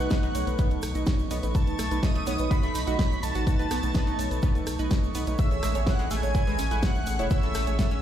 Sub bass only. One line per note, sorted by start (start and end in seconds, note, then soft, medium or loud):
0.23 0.33 B1 medium
0.35 0.45 B1 loud
0.47 0.57 B1 medium
0.71 0.81 B1 medium
0.83 0.93 B1 loud
0.95 1.05 B1 loud
1.19 1.29 B1 medium
1.31 1.41 B1 loud
1.43 1.53 A1 loud
1.67 1.77 B1 medium
1.79 1.89 B1 loud
1.91 2.01 B1 medium
2.15 2.25 B1 medium
2.27 2.37 B1 loud
2.39 2.49 B1 medium
2.63 2.73 B1 medium
2.75 2.85 B1 loud
2.87 2.97 B1 medium
3.11 3.21 B1 medium
3.23 3.33 B1 loud
3.35 3.45 A1 medium
3.59 3.69 B1 medium
3.71 3.81 B1 loud
3.83 3.93 B1 loud
4.07 4.17 B1 medium
4.19 4.29 B1 loud
4.31 4.41 B1 medium
4.55 4.65 B1 medium
4.67 4.77 B1 loud
4.79 4.89 B1 loud
5.03 5.13 B1 medium
5.15 5.25 B1 loud
5.27 5.37 B1 medium
5.51 5.61 A1 medium
5.63 5.73 A1 loud
5.75 5.85 A1 medium
5.99 6.09 A1 medium
6.11 6.21 A1 loud
6.23 6.33 A1 medium
6.47 6.57 A1 medium
6.58 6.69 A1 loud
6.71 6.81 A1 medium
6.95 7.05 A1 medium
7.07 7.17 A1 loud
7.19 7.29 E1 medium
7.43 7.53 A1 medium
7.55 7.65 A1 loud
7.67 7.77 A1 medium
7.91 8.01 A1 medium